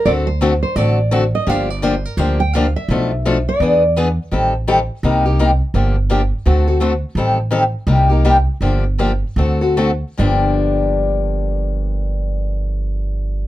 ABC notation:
X:1
M:4/4
L:1/16
Q:"Swing" 1/4=169
K:Gm
V:1 name="Nylon-string guitar"
d2 c4 c2 d4 z2 e2 | f2 d2 c2 B2 c2 g2 f2 =e2- | =e4 z2 d8 z2 | z16 |
z16 | z16 | z16 | z16 |
z16 |]
V:2 name="Steel-string acoustic guitar"
[D,A,C^FA]2 z2 [D,A,CFA] z3 [D,A,CFA]2 z2 [D,A,CFA] z3 | [D,F,B,DG]2 z2 [D,F,B,DG] z3 [D,F,B,DG]2 z2 [D,F,B,DG] z3 | [=B,,F,A,DA]2 z2 [B,,F,A,DA] z3 [=E,=B,D^G]2 z2 [E,B,DG] z3 | [E,G,CGA]2 z2 [E,G,CGA] z3 [C,G,B,EG]2 [B,EG]2 [C,G,B,EG] z3 |
[D,F,B,DG]2 z2 [D,F,B,DG] z3 [D,A,C^FA]2 [CFA]2 [D,A,CFA] z3 | [E,G,CGA]2 z2 [E,G,CGA] z3 [C,G,B,EG]2 [B,EG]2 [C,G,B,EG] z3 | [D,F,B,DG]2 z2 [D,F,B,DG] z3 [D,A,C^FA]2 [CFA]2 [D,A,CFA] z3 | [G,,D,F,B,DG]16- |
[G,,D,F,B,DG]16 |]
V:3 name="Upright bass" clef=bass
D,,8 A,,,8 | G,,,8 D,,8 | =B,,,8 =E,,8 | A,,,8 C,,8 |
G,,,8 D,,8 | A,,,8 C,,8 | G,,,8 D,,8 | G,,,16- |
G,,,16 |]